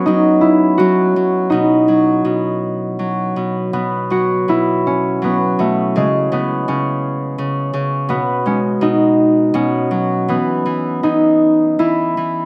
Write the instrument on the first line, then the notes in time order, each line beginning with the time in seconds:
harp
Already playing: A3 B3 C#4
0.06 F#3 D#4
0.41 E4
0.78 F#3 F#4
1.16 F#3
1.50 B2 D#4
1.88 F#3
2.25 B2
2.99 F#3
3.36 B2
3.73 B2 B3
4.10 F#3 F#4
4.48 B2 E4
4.87 C#4
5.22 F#3 B3
5.59 B2 A3
5.96 C#3 G#3
6.32 C#3 B3
6.68 C#3 C#4
7.38 C#3
7.73 C#3
8.09 B2 B3
8.46 G#3 C#4
8.81 B2 D#4
9.54 B2 C#4
9.91 F#3
10.28 E3 B3
10.66 E3
11.03 E3 D#4
11.79 E3 E4
12.17 E3